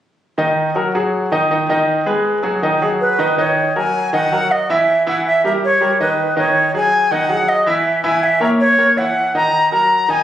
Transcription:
0.38 0.69 D#3 medium
0.38 0.68 D#4 medium
0.38 0.69 D#5 medium
0.75 0.90 F#3 medium
0.75 0.91 F#4 medium
0.75 0.91 A#4 medium
0.95 1.25 F#3 medium
0.95 1.25 F#4 medium
0.95 1.25 G#4 medium
1.32 1.47 D#3 medium
1.32 1.47 D#4 medium
1.32 1.47 D#5 medium
1.51 1.66 D#3 medium
1.51 1.66 D#4 medium
1.51 1.66 D#5 medium
1.69 2.00 D#3 medium
1.69 2.00 D#4 medium
1.69 2.00 D#5 medium
2.06 2.37 G#3 medium
2.06 2.37 G#4 medium
2.06 2.37 B4 medium
2.43 2.58 F#3 medium
2.43 2.59 F#4 medium
2.43 2.59 G#4 medium
2.63 2.78 D#3 medium
2.63 2.78 D#4 medium
2.63 2.78 D#5 medium
2.82 3.12 F#3 medium
2.82 3.12 F#4 medium
2.82 3.12 G#4 medium
3.01 3.35 B4 medium
3.19 3.34 D#3 medium
3.19 3.34 D#4 medium
3.19 3.34 D#5 medium
3.38 3.68 D#3 medium
3.38 3.68 D#4 medium
3.38 3.73 C#5 medium
3.38 3.69 D#5 medium
3.76 4.06 F#3 medium
3.76 4.06 F#4 medium
3.76 4.06 A#4 medium
3.76 4.11 G#5 medium
4.13 4.28 D#3 medium
4.13 4.28 D#4 medium
4.13 4.28 D#5 medium
4.13 4.53 F#5 medium
4.32 4.62 F#3 medium
4.32 4.62 F#4 medium
4.32 4.62 A#4 medium
4.52 4.73 D#5 medium
4.70 4.99 E3 medium
4.70 5.00 E4 medium
4.70 5.00 E5 medium
4.70 5.07 E5 medium
5.07 5.37 E3 medium
5.07 5.37 E4 medium
5.07 5.37 E5 medium
5.07 5.24 F#5 medium
5.26 5.42 E5 medium
5.44 5.74 G3 medium
5.44 5.74 G4 medium
5.44 5.74 A#4 medium
5.44 5.53 E5 medium
5.65 5.98 C#5 medium
5.81 5.96 G3 medium
5.81 5.96 G4 medium
5.81 5.96 A#4 medium
6.00 6.30 D#3 medium
6.00 6.30 D#4 medium
6.00 6.35 B4 medium
6.00 6.30 D#5 medium
6.36 6.67 D#3 medium
6.36 6.67 D#4 medium
6.36 6.72 C#5 medium
6.36 6.67 D#5 medium
6.74 7.04 F#3 medium
6.74 7.05 F#4 medium
6.74 7.05 G#4 medium
6.74 7.13 G#5 medium
7.11 7.26 D#3 medium
7.11 7.27 D#4 medium
7.11 7.27 D#5 medium
7.11 7.50 F#5 loud
7.29 7.59 F#3 medium
7.29 7.60 F#4 medium
7.29 7.60 G#4 medium
7.49 7.67 D#5 medium
7.66 7.97 E3 medium
7.66 7.97 E4 medium
7.66 7.98 E5 medium
7.66 8.02 E5 medium
8.04 8.34 E3 medium
8.04 8.34 E4 medium
8.04 8.34 E5 medium
8.04 8.25 G#5 medium
8.24 8.42 E5 medium
8.40 8.71 A#3 medium
8.40 8.71 A#4 medium
8.40 8.72 C#5 medium
8.40 8.49 E5 medium
8.60 8.99 C#5 loud
8.78 8.93 A#3 medium
8.78 8.94 A#4 medium
8.78 8.94 C#5 medium
8.97 9.27 E3 medium
8.97 9.27 E4 medium
8.97 9.28 E5 medium
8.97 9.35 F#5 medium
9.35 9.65 D#3 medium
9.35 9.65 D#4 medium
9.35 9.65 D#5 medium
9.35 9.70 A#5 medium
9.72 10.02 F#3 medium
9.72 10.02 F#4 medium
9.72 10.02 A#4 medium
9.72 10.12 A#5 medium
10.08 10.23 D#3 medium
10.08 10.23 D#4 medium
10.08 10.23 D#5 medium
10.08 10.23 G#5 medium

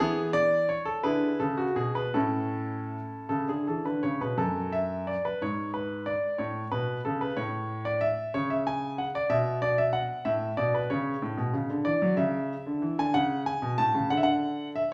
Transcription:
0.00 0.74 E3 medium
0.00 0.32 B3 medium
0.00 0.32 E4 medium
0.00 0.29 G#4 loud
0.33 0.68 D5 loud
0.69 0.86 C#5 medium
0.85 1.03 A4 medium
1.03 1.30 D3 medium
1.03 1.38 E4 medium
1.03 1.38 G#4 medium
1.03 1.40 B4 medium
1.40 1.66 C#3 medium
1.40 1.58 A4 medium
1.57 1.77 F#4 medium
1.76 2.04 B2 medium
1.76 1.96 G#4 medium
1.95 2.15 B4 medium
2.14 2.97 A2 medium
2.14 3.98 C#4 medium
2.14 3.98 E4 medium
2.14 3.28 A4 medium
3.29 3.47 C#3 medium
3.29 3.48 A4 medium
3.48 3.65 D3 medium
3.48 3.67 G#4 medium
3.67 3.84 E3 medium
3.67 3.85 A4 medium
3.85 4.02 D3 medium
3.85 4.03 B4 medium
4.03 4.20 C#3 medium
4.03 4.21 C#5 medium
4.21 4.37 B2 medium
4.21 4.38 B4 medium
4.38 5.12 F#2 medium
4.38 4.72 A4 medium
4.72 5.07 E5 medium
5.07 5.24 D5 medium
5.25 5.41 B4 medium
5.42 6.12 G#2 medium
5.42 5.70 C#5 medium
5.74 6.07 B4 medium
6.06 6.39 D5 medium
6.38 6.62 A2 medium
6.38 6.66 C#5 medium
6.72 6.96 B2 medium
6.72 7.00 B4 medium
7.05 7.29 C#3 medium
7.05 7.21 A4 medium
7.21 7.38 B4 medium
7.37 8.07 A2 medium
7.37 7.85 C#5 medium
7.85 8.02 D5 medium
8.01 8.34 E5 medium
8.34 9.04 C#3 medium
8.34 8.51 C#5 medium
8.50 8.67 E5 medium
8.67 8.99 G#5 medium
8.98 9.15 F#5 medium
9.15 9.31 D5 medium
9.29 9.99 B2 medium
9.29 9.57 E5 medium
9.62 9.78 D5 medium
9.78 9.94 E5 medium
9.93 10.26 F#5 medium
10.25 10.49 A2 medium
10.25 10.58 E5 medium
10.57 10.81 B2 medium
10.57 10.74 D5 medium
10.74 10.90 B4 medium
10.90 11.13 C#3 medium
10.90 11.22 C#5 medium
11.22 11.37 A2 medium
11.37 11.53 B2 medium
11.54 11.69 C#3 medium
11.70 11.85 D3 medium
11.85 12.00 E3 medium
11.85 12.12 D5 medium
12.02 12.17 F#3 medium
12.17 12.52 C#3 medium
12.17 12.98 E5 medium
12.66 12.81 D3 medium
12.82 12.97 E3 medium
12.99 13.14 D3 medium
12.99 13.15 G#5 medium
13.14 13.49 C#3 medium
13.14 13.41 F#5 loud
13.46 13.78 G#5 medium
13.62 13.77 B2 medium
13.78 13.93 A2 medium
13.78 14.05 A5 loud
13.95 14.09 C#3 medium
14.10 14.80 D3 medium
14.10 14.17 F#5 medium
14.17 14.24 E5 medium
14.23 14.67 F#5 medium
14.76 14.91 E5 medium

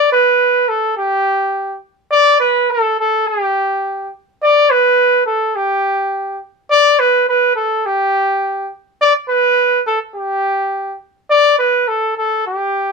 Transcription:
0.12 0.70 B4 medium
0.69 0.97 A4 medium
0.97 1.79 G4 medium
2.11 2.38 D5 loud
2.40 2.72 B4 medium
2.71 2.98 A4 medium
3.00 3.28 A4 medium
3.27 4.12 G4 medium
4.43 4.72 D5 loud
4.70 5.26 B4 loud
5.26 5.57 A4 medium
5.56 6.41 G4 medium
6.71 7.01 D5 loud
7.00 7.27 B4 loud
7.29 7.55 B4 loud
7.56 7.87 A4 medium
7.86 8.71 G4 medium
9.01 9.13 D5 loud
9.29 9.82 B4 loud
9.86 9.99 A4 medium
10.15 10.97 G4 medium
11.30 11.56 D5 loud
11.59 11.89 B4 medium
11.88 12.16 A4 medium
12.17 12.43 A4 medium
12.47 12.92 G4 medium

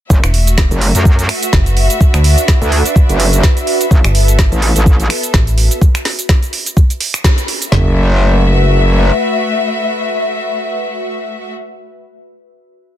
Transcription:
0.10 0.21 F#1 loud
0.10 1.99 A3 medium
0.10 3.87 F#4 medium
0.10 5.82 F#4 medium
0.10 5.78 E5 medium
0.10 kick loud
0.10 cabasa medium
0.24 0.69 E1 medium
0.24 finger snap medium
0.24 closed hi-hat soft
0.24 cabasa soft
0.34 open hi-hat loud
0.47 closed hi-hat medium
0.47 cabasa medium
0.58 kick loud
0.58 snare loud
0.58 cabasa medium
0.71 0.93 F#1 loud
0.71 closed hi-hat soft
0.71 cabasa soft
0.81 5.81 B4 medium
0.81 open hi-hat medium
0.95 1.27 F#2 loud
0.95 5.81 E5 medium
0.95 closed hi-hat medium
0.95 cabasa medium
1.05 kick loud
1.05 cabasa medium
1.19 closed hi-hat medium
1.19 cabasa soft
1.29 finger snap medium
1.29 open hi-hat loud
1.43 closed hi-hat medium
1.43 cabasa medium
1.53 1.88 F#1 loud
1.53 kick loud
1.53 snare loud
1.53 cabasa medium
1.66 closed hi-hat medium
1.66 cabasa soft
1.77 open hi-hat medium
1.90 closed hi-hat medium
1.90 cabasa medium
2.01 3.89 D4 medium
2.01 kick loud
2.01 cabasa medium
2.14 2.36 D2 loud
2.14 finger snap medium
2.14 closed hi-hat soft
2.14 cabasa soft
2.24 open hi-hat loud
2.38 closed hi-hat medium
2.38 cabasa medium
2.48 kick loud
2.48 snare loud
2.48 cabasa medium
2.62 2.83 D2 medium
2.62 closed hi-hat soft
2.62 cabasa soft
2.72 open hi-hat loud
2.86 closed hi-hat medium
2.86 cabasa medium
2.96 kick loud
2.96 cabasa medium
3.09 3.42 F#1 medium
3.09 closed hi-hat medium
3.09 cabasa soft
3.20 open hi-hat loud
3.33 closed hi-hat medium
3.33 cabasa medium
3.43 kick loud
3.43 snare loud
3.43 cabasa medium
3.57 closed hi-hat medium
3.57 cabasa soft
3.67 open hi-hat medium
3.81 closed hi-hat medium
3.81 cabasa medium
3.91 4.02 A1 loud
3.91 5.80 B3 medium
3.91 5.80 A4 medium
3.91 kick loud
3.91 cabasa medium
4.04 4.50 G1 loud
4.04 finger snap medium
4.04 closed hi-hat soft
4.04 cabasa soft
4.15 open hi-hat loud
4.28 closed hi-hat medium
4.28 cabasa medium
4.39 kick loud
4.39 snare loud
4.39 cabasa medium
4.52 4.74 A1 loud
4.52 closed hi-hat soft
4.52 cabasa soft
4.62 open hi-hat loud
4.76 5.08 A1 loud
4.76 closed hi-hat medium
4.76 cabasa medium
4.86 kick loud
4.86 cabasa medium
5.00 closed hi-hat medium
5.00 cabasa soft
5.10 finger snap medium
5.10 open hi-hat loud
5.23 closed hi-hat medium
5.23 cabasa medium
5.34 5.69 A1 loud
5.34 kick loud
5.34 snare loud
5.34 cabasa medium
5.47 closed hi-hat medium
5.47 cabasa soft
5.58 open hi-hat loud
5.71 closed hi-hat medium
5.71 cabasa medium
5.82 kick loud
5.82 cabasa medium
5.95 finger snap medium
5.95 closed hi-hat soft
5.95 cabasa soft
6.05 snare medium
6.05 open hi-hat loud
6.19 closed hi-hat medium
6.19 cabasa medium
6.29 kick loud
6.29 snare loud
6.29 cabasa medium
6.43 closed hi-hat soft
6.43 cabasa soft
6.53 open hi-hat loud
6.66 closed hi-hat medium
6.66 cabasa medium
6.77 kick loud
6.77 cabasa medium
6.90 closed hi-hat medium
6.90 cabasa soft
7.01 open hi-hat loud
7.14 finger snap medium
7.14 closed hi-hat medium
7.14 cabasa medium
7.24 kick loud
7.24 snare loud
7.24 cabasa medium
7.38 closed hi-hat medium
7.38 cabasa soft
7.48 open hi-hat medium
7.62 closed hi-hat medium
7.62 cabasa medium
7.72 9.11 F#1 loud
7.72 11.53 A3 medium
7.72 11.53 F#4 medium
7.72 11.53 E5 medium
7.72 snare loud
7.72 floor tom loud
7.80 11.61 B4 medium
7.88 11.69 E5 medium

